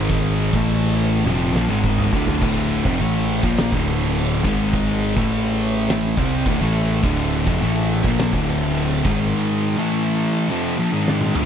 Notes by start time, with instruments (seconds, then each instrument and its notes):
Already playing: picked electric bass G#1, distorted electric guitar G#2 D#3 G#3, tonewheel organ G#3 D#4 A#4
0.09 kick, crash
0.39 crash
0.53 picked electric bass A1, distorted electric guitar A2 E3 A3, tonewheel organ A3 E4 A5, kick
0.68 crash
0.97 crash
1.25 picked electric bass F1, distorted electric guitar F2 C3 F3, tonewheel organ D4 E5, high tom
1.54 picked electric bass A#1, distorted electric guitar A#2 F3, snare
1.68 picked electric bass G#1, distorted electric guitar G#2 D#3 G#3
1.84 kick
1.98 mid tom
2.12 picked electric bass D1, distorted electric guitar D2 A2 D3, kick
2.27 floor tom
2.41 picked electric bass D1, distorted electric guitar D2 A2 D3, kick, crash
2.70 crash
2.85 picked electric bass F1, distorted electric guitar F2 C3, kick
3.00 picked electric bass A1, distorted electric guitar A2 E3 A3, crash
3.29 crash
3.43 picked electric bass A#1, distorted electric guitar A#2 F3 A#3, kick
3.57 snare, crash
3.72 picked electric bass D1, distorted electric guitar D2 A2 D3, kick
3.87 crash
4.02 snare
4.15 crash
4.44 picked electric bass G#1, distorted electric guitar G#2 D#3 G#3, kick, crash
4.73 kick, crash
5.02 crash
5.16 picked electric bass A1, distorted electric guitar A2 E3 A3, kick
5.31 crash
5.60 crash
5.89 snare, crash
6.17 picked electric bass C2, distorted electric guitar C3 G3 C4, kick, crash
6.46 picked electric bass D1, distorted electric guitar D2 A2, kick, crash
6.61 picked electric bass A1, distorted electric guitar A2 E3 A3
6.75 crash
7.03 picked electric bass D1, distorted electric guitar D2 A2 D3, tonewheel organ D4 A4 E5, kick, crash
7.33 crash
7.46 picked electric bass F1, distorted electric guitar F2 C3, kick
7.61 picked electric bass A1, distorted electric guitar A2 E3 A3, crash
7.90 crash
8.03 picked electric bass A#1, distorted electric guitar A#2 F3 A#3, kick
8.19 snare, crash
8.33 picked electric bass D1, distorted electric guitar D2 A2 D3, kick
8.47 crash
8.63 snare
8.76 crash
9.04 picked electric bass G#1, distorted electric guitar G#2 D#3 G#3, tonewheel organ G#3 D#4 A#4, kick, crash
9.76 distorted electric guitar A2 E3 A3, tonewheel organ A3 E4 A5
10.48 distorted electric guitar F2 C3 F3, tonewheel organ D4 E5
10.78 distorted electric guitar A#2 F3
10.91 distorted electric guitar G#2 D#3 G#3
11.08 snare
11.21 high tom
11.34 distorted electric guitar D2 A2 D3, mid tom